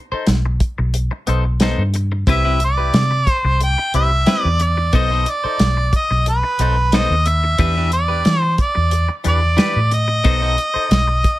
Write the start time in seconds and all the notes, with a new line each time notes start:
0.12 D#4 A4 C5, muted fingered electric bass stroke
0.27 B1, muted clean electric guitar stroke, snare, closed hi-hat
0.46 muted clean electric guitar stroke
0.60 kick, closed hi-hat
0.78 B1, muted clean electric guitar stroke
0.94 closed hi-hat
1.11 muted clean electric guitar stroke
1.27 B1 B3 D#4 A4 C5, closed hi-hat
1.45 muted clean electric guitar stroke
1.60 B3 D#4 A4 C5, snare, closed hi-hat
1.78 G2
1.94 muted clean electric guitar stroke, closed hi-hat
2.12 muted clean electric guitar stroke
2.27 C2 C4 E4 G4 B4 E5, kick, closed hi-hat
2.45 C4 E4 G4 B4
2.60 muted clean electric guitar stroke, closed hi-hat
2.65 D5
2.77 E4 G4 B4
2.94 C3, muted clean electric guitar stroke, snare, closed hi-hat
3.11 muted clean electric guitar stroke
3.27 C5, kick, closed hi-hat
3.44 C2, muted clean electric guitar stroke
3.61 G5, closed hi-hat
3.78 muted clean electric guitar stroke
3.94 C2 C4 E4 G4 B4 E5, closed hi-hat
4.12 muted clean electric guitar stroke
4.26 C4 E4 G4 B4, snare, closed hi-hat
4.42 E2 D5
4.60 D5, muted clean electric guitar stroke, closed hi-hat
4.77 muted clean electric guitar stroke
4.93 B1 B3 D#4 A4 C5 D#5, kick, closed hi-hat
5.11 B3 D#4 A4 C5
5.26 D5, muted clean electric guitar stroke, closed hi-hat
5.44 D#4 A4 C5, muted fingered electric bass stroke
5.59 B1, muted clean electric guitar stroke, snare, closed hi-hat
5.77 muted clean electric guitar stroke
5.93 D#5, kick, closed hi-hat
6.11 B1, muted clean electric guitar stroke
6.26 B4, closed hi-hat
6.43 muted clean electric guitar stroke
6.59 B1 B3 D#4 A4 C5, closed hi-hat
6.78 muted clean electric guitar stroke
6.92 B3 D#4 A4 C5 D#5, snare, closed hi-hat
7.10 D#2
7.26 E5, muted clean electric guitar stroke, closed hi-hat
7.44 muted clean electric guitar stroke
7.58 E2 E3 D4 G4 B4, kick, closed hi-hat
7.77 E3 D4 G4 B4
7.92 D5, muted clean electric guitar stroke, closed hi-hat
8.08 D4 G4 B4
8.25 E3, snare, closed hi-hat
8.40 C5, muted clean electric guitar stroke
8.58 D5, kick, closed hi-hat
8.75 E2, muted clean electric guitar stroke
8.91 closed hi-hat
9.09 muted clean electric guitar stroke
9.24 E2 E3 D4 G4 B4, closed hi-hat
9.28 D5
9.57 E3 D4 G4 B4, snare, closed hi-hat
9.76 A2
9.91 D#5, muted clean electric guitar stroke, closed hi-hat
10.08 muted clean electric guitar stroke
10.24 B1 B3 D#4 A4 C5, kick, closed hi-hat
10.41 B3 D#4 A4 C5
10.57 muted clean electric guitar stroke, closed hi-hat
10.74 D#4 A4 C5, muted fingered electric bass stroke
10.90 B1, muted clean electric guitar stroke, snare, closed hi-hat
11.07 muted clean electric guitar stroke
11.24 kick, closed hi-hat